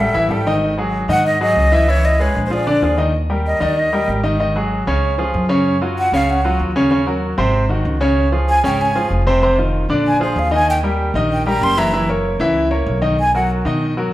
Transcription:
Already playing: A1
0.00 G3 G4 A4 E5
0.13 A1 E3 E4 E5
0.29 G#1 G3 G4 A4 G5
0.47 D#3 D#4 D#5
0.78 F#3 F#4 G#4
1.08 G#2 D#3 D#4 D#5 F#5
1.27 D#5
1.41 F#3 F#4 G#4 D#5
1.56 C#2
1.72 E3 E4 E5
1.88 E3 E4 C#5 E5
2.05 D#5
2.19 G#3 G#4 B4 C#5
2.35 A#1
2.46 C5
2.50 F3 F4 G#4 D5
2.66 D3 D4 D5
2.82 D#2 F3 F4 G#4
2.98 D#3 D#4 D#5
3.30 G3 G4 A#4
3.47 D#5
3.60 D#2 D#3 D#4 D5 D#5
3.79 D#5
3.93 G3 G4 A#4
4.08 G#1
4.23 D#3 D#4 D#5
4.39 D#3 D#4 D#5
4.56 F#3 F#4 G#4
4.87 C#2 C#3 C#4 C#5
5.18 F3 F4 G#4
5.34 F#2
5.49 C#3 C#4 C#5
5.81 F#3 F4 F#4
5.98 F#5
6.12 C#2 C#3 C#4 C#5 F5
6.30 F#5
6.45 F#3 F4 F#4
6.59 D#2
6.76 C#3 C#4 C#5
6.91 C#3 C#4 C#5
7.06 F#3 F#4 A#4
7.38 G#1 C3 C4 C5
7.69 D#3 D#4 F#4
7.85 C#2
8.01 C#3 C#4 C#5
8.32 F3 F4 G#4
8.49 G#5
8.63 G#1 C#3 C#4 C#5 G5
8.81 G#5
8.95 F3 F4 G#4
9.10 F1
9.27 C3 C4 C5
9.42 C3 C4 C5
9.58 D#3 D#4 F4
9.89 A#1 D3 D4 D5
10.07 G#5
10.20 F3 F4 G#4 C5
10.36 D#2 F5
10.51 D#3 D#4 D#5 G#5
10.70 G5
10.83 G3 G4 A#4
11.14 A#1 D#3 D#4 D#5
11.32 G5
11.46 G3 G4 A#4 A#5
11.61 F#1 C6
11.77 E3 E4 E5 A#5
11.93 E3 E4 E5
12.09 A#3 A#4 C#5
12.40 C#2 E3 E4 E5
12.71 A#3 A#4 C#5
12.87 B1
13.02 D#3 D#4 D#5
13.20 G#5
13.35 F#3 F#4 A#4 F#5
13.65 B2 D#3 D#4 D#5
13.97 F#3 F#4 A#4

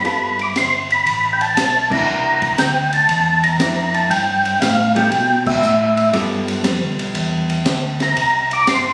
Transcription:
Already playing: B5
0.04 G2 G3 B3 F4 A4, kick, ride
0.39 D6, ride
0.55 G1 C6, kick, snare, hi-hat pedal, ride
0.90 B5, ride
1.06 A1, kick, ride
1.33 G5
1.41 A5, ride
1.56 B1, kick, snare, hi-hat pedal, ride
1.90 A#3 D4 E4 A#5, kick, crash
2.06 C2
2.42 kick, ride
2.58 D2 G5, kick, snare, hi-hat pedal, ride
2.93 A5, ride
3.08 E2, kick, ride
3.44 A#5, ride
3.59 F2 A#3 D4 E4, kick, snare, hi-hat pedal, ride
3.94 A5, ride
4.10 G2 G5, kick, ride
4.45 ride
4.60 A2 F5, kick, snare, hi-hat pedal, ride
4.95 G3 B3 F4 A4 G5, ride
5.11 B2, kick, ride
5.46 E5, kick, crash
5.62 A2, hi-hat pedal
5.97 ride
6.13 G2 G3 B3 F4 A4, kick, ride
6.48 ride
6.64 F2, kick, snare, hi-hat pedal, ride
6.81 D2
6.98 B1, ride
7.15 E2, kick, ride
7.50 ride
7.65 D2, kick, snare, hi-hat pedal, ride
8.00 A#5, snare, ride
8.16 C2, kick, ride
8.51 D6, ride
8.67 G1 C6, kick, snare, hi-hat pedal, ride

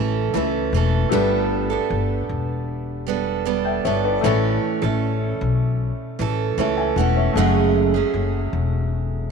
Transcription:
Already playing: A1 E3 A3 C#4 E4 C#5
0.00 A4
0.33 C#2 E3 A3 C#4 E4 A4 B4
0.73 E1 E3 A3 C#4
0.77 A4
1.09 G1 G3 A3 B3 D4 G4
1.13 A4 B4
1.70 B3 D4 A4
1.90 G1
2.29 E1
3.07 G3 B3 D4 A4
3.46 G3 B3 D4 A4
3.65 E5 G5
3.85 G1 G3 B3 D4 A4 C#5 E5
4.04 B4 D5
4.21 A1 A2 E3 A3 E4 C#5
4.26 C#4 A4
4.82 A1 A3 C#4 A4
5.41 B1
6.19 A1 E3 A3 C#4 A4
6.58 C#2 E3 A3 C#4 A4 C#5 E5
6.78 E5 G#5
6.96 E1 E3 A3 C#4 F#5
7.00 A4
7.16 C#5 E5
7.33 F#1 F#2 G#3 A3
7.38 C#3 F#3 A3 C#4 G#4 F#5
7.94 F#3 A3 C#4 G#4
8.14 F#1
8.53 E1

